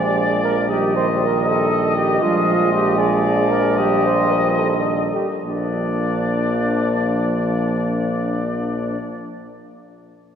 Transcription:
Already playing: A#1 F3 G#3 G#4 D5
0.44 A#4
0.69 D#3 G3 G4 D#5
0.95 C5
1.22 A#4
1.47 A4
1.97 G4
2.22 A#1 F3 G#3 F4
2.73 G4
2.98 G#4 D5
3.50 A#4
3.77 G3 G4 D#5
4.05 C5
4.31 A#4
4.59 D#3 A4
5.15 G4
5.44 A#1 F3 A#3 D4 D5

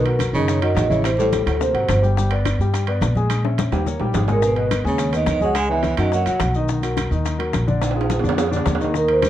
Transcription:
Already playing: B1 B2 B4
0.06 F#3 F#4 A#4, high conga, high timbale
0.19 high bongo, high conga, high timbale, maracas
0.33 F#2 C#3 D#3 D#4 C#5 D#5, high conga, maracas
0.48 high bongo, high conga, high timbale, maracas
0.62 D#3 F#3 F#4 A#4 D#5, high conga, high timbale
0.74 A1 D#3 D#5, high bongo, low bongo, high conga, high timbale, low timbale, maracas
0.90 C#3 E3 E4 C#5 E5, high conga, maracas
1.04 C3 C5, high bongo, high conga, high timbale, maracas
1.18 A2 G3 G4 A4, high bongo, high conga, maracas
1.32 high bongo, high conga, high timbale, maracas
1.46 D2 A2 F#3 F#4 F#5, high bongo, high conga, high timbale, maracas
1.59 C3 A#3 A#4 C5, high bongo, high conga, maracas
1.73 G#1 F#3 F#4 F#5, high conga, high timbale
1.88 G1, high bongo, low bongo, high conga, high timbale, maracas
2.02 G3 G4 G5, high bongo, high conga, maracas
2.17 G3 G4 G5, high bongo, high conga, maracas
2.31 B3 B4 D5, high conga, high timbale
2.45 high bongo, high conga, high timbale, maracas
2.59 G2 G3 G4 G5, high conga, maracas
2.73 high bongo, high conga, high timbale, maracas
2.87 B3 B4 D5, high conga, high timbale
3.01 A#1, high bongo, low bongo, high conga, high timbale, maracas
3.15 G#3 G#4 G#5, high conga, maracas
3.30 high bongo, high conga, high timbale, maracas
3.44 C#4 C#5 E5, high bongo, high conga
3.58 high bongo, high conga, high timbale, maracas
3.72 D#2 G3 G4 G5, low bongo, high conga, high timbale, maracas
3.86 A#3 A#4 C#5, low bongo, high conga, maracas
4.00 A#1 G3 G4 G5, high conga, high timbale
4.14 G#1 G#2 G#4, low bongo, high conga, low timbale, maracas
4.28 A#2 G#3 G#4 A#4 G#5, low bongo, high conga, low timbale, maracas
4.42 B2 G#3 G#4 B4 G#5, high bongo, high conga, maracas
4.56 B3 B4 D#5, high conga, high timbale
4.71 high bongo, high conga, high timbale, maracas
4.84 D#2 C#3 G#3 G#4 C#5 G#5, high conga, maracas
4.98 high bongo, high conga, high timbale, maracas
5.13 D#3 B3 B4 D#5, high conga, high timbale, maracas
5.27 C#2 D#3 D#5, high bongo, low bongo, high conga, high timbale, maracas
5.41 F#3 G#3 G#4 F#5 G#5, high conga, maracas
5.55 G#3 G#5, high bongo, high conga, high timbale, maracas
5.69 E3 B3 B4 C#5 E5, high bongo, high conga
5.83 high bongo, high conga, high timbale, maracas
5.97 F#2 D#3 F#3 F#4 D#5 F#5, high bongo, high conga, high timbale, maracas
6.12 F#3 A#3 A#4 C#5 F#5, high bongo, high conga, maracas
6.26 C#2 F#3 F#4 F#5, high conga, high timbale, maracas
6.40 B1, high bongo, low bongo, high conga, high timbale, maracas
6.54 D#3 D#4 D#5, high bongo, high conga, maracas
6.68 D#3 D#4 D#5, high bongo, high conga, maracas
6.82 F#3 F#4 A#4, high conga, high timbale, maracas
6.97 high bongo, high conga, high timbale, maracas
7.11 D#2 D#3 D#4 D#5, high conga, maracas
7.25 high bongo, high conga, high timbale, maracas
7.38 F#3 F#4 A#4, high conga, high timbale
7.53 A#1, high bongo, low bongo, high conga, high timbale, maracas
7.67 D3 D4 D5, high conga, maracas
7.82 high bongo, high timbale, maracas
7.91 high timbale
7.96 F3 F4 G#4, high bongo, high conga
8.01 high timbale
8.10 high bongo, high conga, high timbale, maracas
8.20 D3 D4, high bongo, low timbale
8.24 F2 D5, high conga, maracas
8.29 low timbale
8.37 F3 F4 G#4, high bongo, high conga, low timbale, maracas
8.47 low timbale
8.51 D3 D4 D5, high conga, maracas
8.56 low timbale
8.66 D#2, high bongo, low bongo, high conga, low timbale, maracas
8.75 low timbale
8.80 D#3 D#4 D#5, high bongo, high conga, maracas
8.84 low timbale
8.94 D#3 D#4 A#4 D#5, high bongo, high conga, maracas
9.08 C5, high conga, high timbale
9.22 G3 G4 A#4, high bongo, high conga, high timbale, maracas

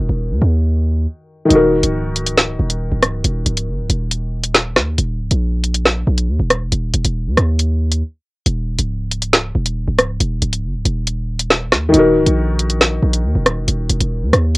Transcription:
Already playing: D#3 D#4 F#4 A#4
0.09 D#1
0.31 D#2
0.42 D#2
1.45 D#3 D#4
1.50 D#1 F#4, closed hi-hat
1.55 A#4
1.83 C#1, closed hi-hat
2.16 closed hi-hat
2.26 closed hi-hat
2.37 snare, closed hi-hat
2.59 D#1
2.70 closed hi-hat
2.92 C#1
3.03 cross-stick, closed hi-hat
3.24 D#1, closed hi-hat
3.46 C#1, closed hi-hat
3.57 closed hi-hat
3.68 F#1
3.79 C#1
3.90 D#1, closed hi-hat
4.11 closed hi-hat
4.44 closed hi-hat
4.55 snare, closed hi-hat
4.76 D#2, cross-stick, snare
4.98 D#1, closed hi-hat
5.20 C#1
5.31 A#1, closed hi-hat
5.64 closed hi-hat
5.74 closed hi-hat
5.85 snare, closed hi-hat
6.07 A#1
6.18 closed hi-hat
6.29 D#2
6.40 D#1
6.50 cross-stick, closed hi-hat
6.61 E1
6.72 D#1, closed hi-hat
6.94 D#1, closed hi-hat
7.05 D#1, closed hi-hat
7.27 D#2
7.37 D#2, cross-stick, closed hi-hat
7.59 closed hi-hat
7.92 closed hi-hat
8.46 D#1, closed hi-hat
8.79 C#1, closed hi-hat
9.11 closed hi-hat
9.22 closed hi-hat
9.33 snare, closed hi-hat
9.55 D#1
9.65 closed hi-hat
9.87 C#1
9.98 cross-stick, closed hi-hat
10.20 D#1, closed hi-hat
10.42 C#1, closed hi-hat
10.53 closed hi-hat
10.63 F#1
10.74 C#1
10.85 D#1, closed hi-hat
11.07 closed hi-hat
11.39 closed hi-hat
11.50 snare, closed hi-hat
11.72 D#2, cross-stick, snare
11.89 D#3 D#4
11.94 D#1 F#4, closed hi-hat
11.99 A#4
12.16 C#1
12.26 A#1, closed hi-hat
12.59 closed hi-hat
12.70 closed hi-hat
12.81 snare, closed hi-hat
13.03 A#1
13.13 closed hi-hat
13.24 D#2
13.35 D#1
13.46 cross-stick, closed hi-hat
13.57 E1
13.68 D#1, closed hi-hat
13.89 D#1, closed hi-hat
14.00 D#1, closed hi-hat
14.22 D#2
14.33 D#2, cross-stick, closed hi-hat
14.55 closed hi-hat

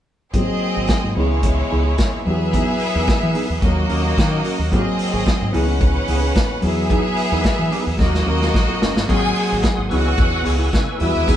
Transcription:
0.33 G#1 F#3 A#3 C4 D#4 F#4 G#4 D#5, kick, closed hi-hat
0.49 muted clean electric guitar stroke
0.61 muted clean electric guitar stroke
0.75 G#1 C4 F#4 G#4
0.87 muted fingered electric bass stroke, kick, snare, closed hi-hat
1.04 G#2, muted clean electric guitar stroke
1.16 C#2 E3 G#3 B3 C#4 D#4 E4 G#4 C#5
1.30 muted clean electric guitar stroke
1.43 muted clean electric guitar stroke, kick, closed hi-hat
1.58 muted clean electric guitar stroke
1.70 C#2 B3 E4 G#4
1.85 B3 E4 G#4
1.98 kick, snare, closed hi-hat
2.12 muted clean electric guitar stroke
2.25 E2 F#3 B3 E4 G4 G#4 E5
2.34 G#4
2.53 B3 D#4 G#4, kick, closed hi-hat
2.68 muted clean electric guitar stroke
2.79 muted clean electric guitar stroke, open hi-hat
2.95 E2 B3 D#4 A#4
3.07 muted fingered electric bass stroke, kick, snare, closed hi-hat
3.21 E3, muted clean electric guitar stroke
3.33 B3 D#4 G#4, open hi-hat
3.48 E2, muted clean electric guitar stroke
3.62 D#2 F#3 A#3 C#4 D#4 F#4 A#4 D#5, muted clean electric guitar stroke, kick, closed hi-hat
3.76 muted clean electric guitar stroke
3.89 D#2 C#4 F#4 A#4, open hi-hat
4.04 C#4 F#4 A#4
4.17 D#3, kick, snare, closed hi-hat
4.31 C#4 F#4 A#4
4.44 C#4 F#4 A#4, open hi-hat
4.59 D#2, muted clean electric guitar stroke
4.71 G#1 F#3 A#3 C4 D#4 F#4 G#4 D#5, kick, closed hi-hat
4.86 muted clean electric guitar stroke
4.99 muted clean electric guitar stroke, open hi-hat
5.12 G#1 C4 F#4 G#4
5.26 muted clean electric guitar stroke, kick, snare, closed hi-hat
5.41 G#2, muted clean electric guitar stroke
5.52 C#2 E3 B3 C#4 D#4 E4 G#4 B4 F#5, open hi-hat
5.68 muted clean electric guitar stroke
5.81 muted clean electric guitar stroke, kick, closed hi-hat
5.95 muted clean electric guitar stroke
6.08 C#2 B3 E4 G#4, open hi-hat
6.22 B3 E4 G#4
6.35 muted clean electric guitar stroke, kick, snare, closed hi-hat
6.49 muted clean electric guitar stroke
6.61 E2 F#3 B3 E4 G#4 E5, open hi-hat
6.77 muted clean electric guitar stroke
6.89 B3 D#4 G#4, kick, closed hi-hat
7.05 muted clean electric guitar stroke
7.17 muted clean electric guitar stroke, open hi-hat
7.32 E2 B3 D#4 A#4
7.44 kick, snare, closed hi-hat
7.59 E3, muted clean electric guitar stroke
7.71 B3 D#4 G#4, open hi-hat
7.86 E2, muted clean electric guitar stroke
7.98 D#2 F#3 A#3 C#4 D#4 F#4 D#5, muted clean electric guitar stroke, kick, snare
8.13 muted clean electric guitar stroke, snare
8.26 D#2 C#4 F#4 A#4
8.41 C#4 F#4 A#4, snare
8.53 A#1, muted clean electric guitar stroke, kick, snare
8.68 C#4 F#4 A#4
8.81 F#1 C#4 F#4 A#4, snare
8.96 G1, muted clean electric guitar stroke, snare
9.08 G#1 F#3 A#3 C4 D#4 F#4 G#4 F#5 G#5 C6 D#6, kick, crash
9.23 muted clean electric guitar stroke
9.35 muted clean electric guitar stroke, open hi-hat
9.51 G#1 C4 F#4 G#4
9.62 kick, snare, closed hi-hat
9.77 G#1, muted clean electric guitar stroke
9.89 C#2 E3 B3 C#4 D#4 E4 F#4 G#4 B4 F#5 G#5 C#6 E6, open hi-hat
9.94 F#4
10.00 G#4
10.05 muted clean electric guitar stroke
10.17 E2, muted clean electric guitar stroke, kick, closed hi-hat
10.31 muted clean electric guitar stroke
10.43 C#2 B3 E4 G#4, open hi-hat
10.58 B3 E4 G#4
10.72 C#3, muted clean electric guitar stroke, kick, snare, closed hi-hat
10.87 muted clean electric guitar stroke
10.98 E2 E3 G3 B3 E4 F#4 E5 D#6, open hi-hat
11.06 G#3
11.14 D#2, muted clean electric guitar stroke
11.26 E2 B3 D#4 G#4, kick, closed hi-hat

